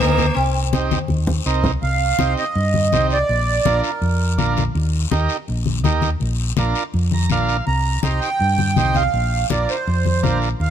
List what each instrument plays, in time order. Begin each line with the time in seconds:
0.00 fingered electric bass D2, sitar A#3, transistor combo organ A#3 D#4 A#4, short guiro
0.18 high conga, short guiro
0.34 fingered electric bass C2, sitar C4, high conga, long guiro
0.73 transistor combo organ C4 D#4 G4, high conga, short guiro
0.91 high conga, short guiro
1.08 fingered electric bass D#2, high conga, long guiro
1.27 low conga
1.46 fingered electric bass C2, transistor combo organ C4 D#4 A#4, short guiro
1.64 low conga, short guiro
1.82 fingered electric bass C2, accordion F5, high conga, long guiro
2.19 fingered electric bass C2, transistor combo organ C4 D#4 G4, high conga, short guiro
2.37 accordion D#5, short guiro
2.55 fingered electric bass G2, high conga, long guiro
2.74 high conga
2.92 fingered electric bass C2, transistor combo organ C4 D#4 G4, high conga, short guiro
3.10 accordion D5, short guiro
3.29 fingered electric bass A#1, high conga, long guiro
3.65 fingered electric bass A#1, transistor combo organ D4 F4 A#4, high conga, short guiro
3.84 accordion A#4, short guiro
4.01 fingered electric bass F2, high conga, long guiro
4.38 fingered electric bass A#1, transistor combo organ D4 F4 A#4, high conga, short guiro
4.57 high conga, short guiro
4.75 fingered electric bass D#2, high conga, long guiro
5.11 fingered electric bass D#2, transistor combo organ D#4 G4 A#4, high conga, short guiro
5.29 short guiro
5.48 fingered electric bass A#1, high conga, long guiro
5.66 high conga
5.84 fingered electric bass D#2, transistor combo organ D#4 G4 A#4, high conga, short guiro
6.02 high conga, short guiro
6.20 fingered electric bass A#1, high conga, long guiro
6.57 fingered electric bass A#1, transistor combo organ D4 F4 A#4, high conga, short guiro
6.75 short guiro
6.94 fingered electric bass F2, high conga, long guiro
7.11 transistor combo organ A#5, high conga
7.30 fingered electric bass A#1, transistor combo organ D4 F4 A#4 F5, high conga, short guiro
7.49 short guiro
7.67 fingered electric bass C2, accordion A#5, high conga, long guiro
8.02 fingered electric bass C2, transistor combo organ D#4 G4 C5, accordion A#5, high conga, short guiro
8.20 accordion G5, short guiro
8.39 fingered electric bass G2, high conga, long guiro
8.58 high conga
8.76 fingered electric bass C2, transistor combo organ D#4 G4 C5, high conga, short guiro
8.95 accordion F5, high conga, short guiro
9.14 fingered electric bass A#1, high conga, long guiro
9.50 fingered electric bass A#1, transistor combo organ D4 F4 A#4, accordion D5, high conga, short guiro
9.69 accordion C5, short guiro
9.87 fingered electric bass F2, high conga, long guiro
10.05 high conga
10.23 fingered electric bass A#1, transistor combo organ D4 F4 A#4, high conga, short guiro
10.42 short guiro
10.60 fingered electric bass D#2, accordion F5, high conga, long guiro